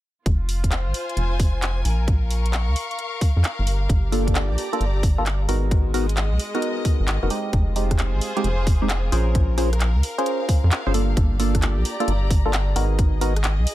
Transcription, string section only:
0.26 2.47 F4 medium
0.67 1.85 C5 medium
0.99 2.45 G#5 medium
1.85 4.41 A#4 medium
2.02 4.41 F5 medium
2.29 3.67 C#6 medium
3.67 5.49 G4 medium
4.19 5.49 D5 medium
4.52 5.49 A#5 medium
5.49 8.18 G#3 medium
5.87 8.18 D#5 medium
7.53 9.87 F4 medium
7.83 9.13 C5 medium
7.92 9.87 G#4 medium
9.12 11.65 A#4 medium
9.63 11.68 F5 medium
10.94 12.76 G4 medium
11.29 12.76 D5 medium
11.79 12.76 A#5 medium
12.76 13.74 G#4 medium
12.85 13.74 D#5 medium

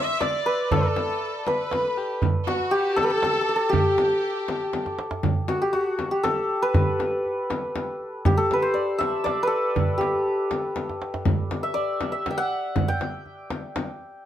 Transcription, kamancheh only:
0.00 0.22 E5 medium
0.21 0.74 D5 medium
0.72 1.46 A4 medium
1.47 1.99 B4 medium
1.97 2.22 G4 medium
2.47 2.73 F#4 medium
2.71 2.98 G4 medium
2.96 3.05 A4 medium
3.04 3.13 B4 medium
3.11 3.73 A4 medium
3.72 3.81 G4 medium
3.80 3.88 A4 medium
3.86 4.98 G4 medium

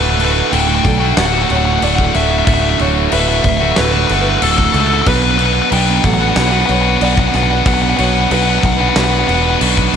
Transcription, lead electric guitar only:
0.03 0.09 B4 medium
0.10 0.17 B4 medium
0.18 0.24 B4 medium
0.25 0.32 B4 medium
0.32 0.40 B4 medium
0.40 0.47 B4 medium
0.47 0.55 B4 medium
0.52 0.60 G5 loud
0.60 0.67 G5 medium
0.67 0.74 G5 medium
0.75 0.82 G5 medium
0.83 0.91 G5 loud
0.91 0.98 G5 medium
0.98 1.05 G5 medium
1.05 1.13 G5 medium
1.18 1.25 F#5 loud
1.26 1.33 F#5 medium
1.34 1.42 F#5 medium
1.42 1.49 F#5 medium
1.49 1.56 F#5 medium
1.56 1.64 F#5 medium
1.65 1.72 F#5 medium
1.73 1.78 F#5 medium
1.79 1.87 F#5 medium
1.88 1.95 F#5 medium
1.95 2.03 F#5 medium
2.04 2.12 F#5 medium
2.15 2.23 E5 medium
2.23 2.30 E5 medium
2.31 2.38 E5 medium
2.39 2.45 E5 medium
2.45 2.53 E5 medium
2.54 2.61 E5 medium
2.62 2.69 E5 medium
2.69 2.77 E5 medium
3.13 3.19 E5 loud
3.20 3.27 E5 medium
3.28 3.35 E5 loud
3.35 3.42 E5 medium
3.42 3.49 E5 medium
3.49 3.56 E5 medium
3.57 3.64 E5 medium
3.65 3.71 E5 medium
3.72 3.79 E5 medium
3.78 3.84 B4 medium
3.85 3.92 B4 medium
3.92 4.00 B4 medium
4.00 4.07 B4 medium
4.07 4.14 B4 medium
4.14 4.21 B4 medium
4.21 4.29 B4 medium
4.29 4.37 B4 medium
4.37 4.43 B4 medium
4.43 4.50 A4 medium
4.51 4.57 A4 medium
4.57 4.64 A4 medium
4.65 4.72 A4 medium
4.72 4.79 A4 medium
4.80 4.87 A4 medium
4.87 4.93 A4 medium
4.94 5.01 A4 medium
5.02 5.08 A4 medium
5.08 5.15 B4 loud
5.16 5.22 B4 medium
5.22 5.29 B4 loud
5.31 5.37 B4 medium
5.38 5.45 B4 medium
5.46 5.53 B4 medium
5.53 5.61 B4 medium
5.62 5.69 B4 medium
5.73 6.05 G5 loud
6.05 6.13 F#5 loud
6.14 6.21 F#5 medium
6.22 6.28 F#5 medium
6.29 6.36 F#5 medium
6.37 6.43 F#5 medium
6.44 6.51 F#5 medium
6.51 6.59 F#5 medium
6.59 6.65 F#5 medium
6.66 6.74 F#5 medium
6.75 6.81 F#5 medium
6.81 6.89 F#5 medium
6.89 6.97 F#5 medium
6.97 7.04 F#5 medium
7.05 7.12 F#5 medium
7.13 7.19 F#5 loud
7.19 7.27 F#5 medium
7.28 7.35 F#5 loud
7.35 7.43 F#5 medium
7.43 7.51 F#5 loud
7.51 7.57 F#5 medium
7.58 7.66 F#5 loud
7.67 7.73 F#5 medium
7.74 7.81 F#5 medium
7.82 7.89 F#5 medium
7.89 7.96 F#5 loud
7.97 8.04 F#5 medium
8.04 8.12 F#5 medium
8.12 8.20 F#5 medium
8.21 8.28 F#5 medium
8.28 8.34 F#5 medium
8.35 8.42 F#5 loud
8.42 8.50 F#5 medium
8.50 8.58 F#5 medium
8.59 8.65 F#5 medium
8.66 8.72 F#5 medium
8.72 8.80 F#5 medium
8.81 8.88 F#5 medium
8.89 8.96 F#5 medium
8.96 9.04 F#5 medium
9.04 9.11 F#5 medium
9.12 9.19 F#5 medium
9.19 9.27 F#5 medium
9.27 9.34 F#5 medium
9.34 9.42 F#5 medium
9.43 9.50 F#5 medium
9.50 9.58 F#5 medium

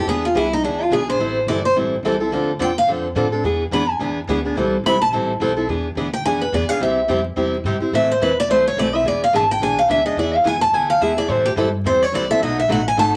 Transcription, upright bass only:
0.06 0.34 E2 medium
0.34 0.62 C2 medium
0.63 0.90 D2 medium
0.90 1.18 B1 medium
1.18 1.46 A1 medium
1.47 1.74 G1 medium
1.75 2.02 A1 medium
2.03 2.30 C2 medium
2.31 2.59 D2 medium
2.59 2.87 E2 medium
2.87 3.14 F2 medium
3.15 3.43 A2 medium
3.43 3.71 E2 medium
3.71 3.99 F2 medium
3.99 4.27 E2 medium
4.28 4.55 D2 loud
4.56 4.83 C2 loud
4.84 5.11 B1 medium
5.11 5.39 A1 medium
5.40 5.67 B1 loud
5.68 5.95 E2 medium
5.95 6.23 D2 medium
6.24 6.51 F2 medium
6.52 6.67 E2 medium
6.80 7.08 C2 medium
7.08 7.35 F2 medium
7.36 7.63 E2 medium
7.64 7.79 G#2 medium
7.80 muted upright bass stroke soft
7.92 8.20 A2 medium
8.20 8.48 E2 medium
8.48 8.76 C2 medium
8.77 9.04 B1 medium
9.04 9.32 E1 medium
9.33 9.59 G#1 medium
9.60 9.87 B1 medium
9.88 10.15 D2 medium
10.16 10.44 E2 medium
10.44 10.71 F2 medium
10.72 11.00 D2 medium
11.00 11.28 E2 medium
11.28 11.55 A2 medium
11.56 11.84 G2 loud
11.84 12.12 E2 medium
12.12 12.40 C2 medium
12.40 12.67 B1 medium
12.68 12.96 A1 medium
12.96 13.16 G#1 medium

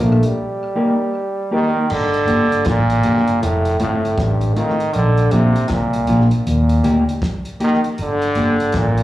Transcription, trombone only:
0.02 0.28 A3 medium
0.26 1.53 G3 medium
1.54 1.93 D#3 loud
1.92 2.68 D3 loud
2.67 3.43 A#2 loud
3.42 3.79 A2 loud
3.80 4.15 A2 loud
4.19 4.57 G2 medium
4.55 4.96 D#3 loud
4.94 5.33 D3 loud
5.32 5.72 C3 loud
5.70 6.22 A#2 loud
6.47 7.19 A#2 medium
7.64 7.80 D#3 loud
8.02 8.79 D3 loud
8.77 9.03 A#2 loud

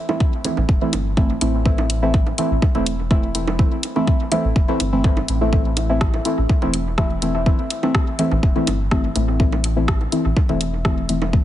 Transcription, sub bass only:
0.57 0.65 A1 medium
0.69 0.77 E1 medium
0.93 1.35 G1 medium
1.41 2.32 A1 loud
2.51 2.59 A1 loud
2.75 3.65 E1 loud
4.44 4.52 A1 medium
4.56 4.64 E1 medium
4.80 5.22 G1 medium
5.29 6.19 A1 loud
6.38 6.46 A1 loud
6.62 7.52 E1 loud
8.31 8.39 A1 medium
8.43 8.52 E1 medium
8.67 9.10 G1 medium
9.16 10.06 A1 loud
10.25 10.33 A1 medium
10.49 11.39 E1 loud

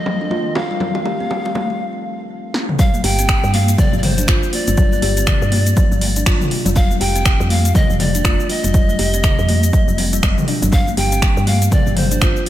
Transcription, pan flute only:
0.00 0.58 D#5 loud
0.56 2.30 F5 loud
2.79 3.06 F5 loud
3.04 3.55 G5 loud
3.54 3.80 F5 loud
3.79 3.97 D5 loud
3.98 4.05 D5 medium
4.04 4.53 C5 medium
4.53 6.47 D5 loud
6.76 6.99 F5 loud
7.00 7.52 G5 loud
7.50 7.77 F5 loud
7.75 8.01 D#5 loud
8.00 8.51 D5 loud
8.50 10.48 D#5 loud
10.73 10.96 F5 loud
10.98 11.49 G5 loud
11.47 11.72 F5 loud
11.72 11.99 D5 loud
11.97 12.46 C5 loud

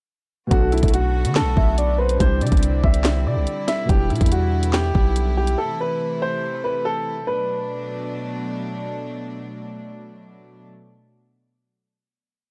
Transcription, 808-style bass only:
0.51 0.82 B1 loud
0.83 1.27 B1 loud
1.25 1.42 D3 loud
1.41 1.56 B1 loud
1.57 2.18 B1 loud
2.20 2.43 C2 loud
2.41 2.51 C3 medium
2.52 2.82 C2 loud
2.84 3.27 C2 loud
3.26 3.38 C3 loud
3.36 3.46 C2 loud
3.89 4.12 E1 loud
4.10 4.20 B2 loud
4.21 4.92 E2 loud
4.95 5.56 B1 loud

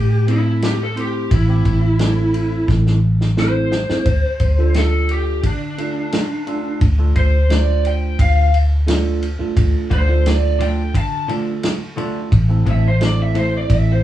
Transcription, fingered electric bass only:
0.00 1.27 A2 loud
1.31 1.63 A1 loud
1.65 2.65 A1 medium
2.68 3.85 A1 loud
3.90 muted fingered electric bass stroke soft
4.05 4.22 D2 medium
4.40 5.39 D2 medium
5.43 6.77 D3 loud
6.81 7.13 D2 loud
7.15 8.15 D2 medium
8.19 9.36 D2 loud
9.40 muted fingered electric bass stroke soft
9.56 9.73 D2 medium
9.91 10.90 D2 medium
10.94 12.28 D3 loud
12.32 12.64 A1 loud
12.66 13.66 A1 medium
13.70 14.02 A1 loud

